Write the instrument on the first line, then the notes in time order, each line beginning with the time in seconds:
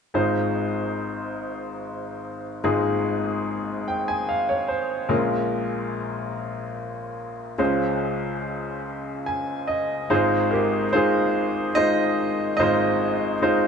upright piano
0.14 G#1 G#2 G#3 D#4 F4 C5
2.64 G#1 G#2 G#3 D#4 F4 G#4
3.88 G5
4.08 G#5
4.29 F5
4.49 C#5
4.68 C5
5.09 A#1 A#2 G#3 C#4 F4 A#4
7.58 C#2 C#3 G#3 C#4 F4 C5
9.26 G#5
9.68 D#5
10.10 G#1 G#2 G#3 D#4 F4 G#4 C5
10.51 G4 A#4
10.93 G#3 D#4 F4 G#4 C5
11.75 G#3 D#4 F4 C5 D#5
12.57 G#1 G#2 G#3 D#4 F4 C5 D#5
12.63 C5
13.42 G#3 D#4 F4 C5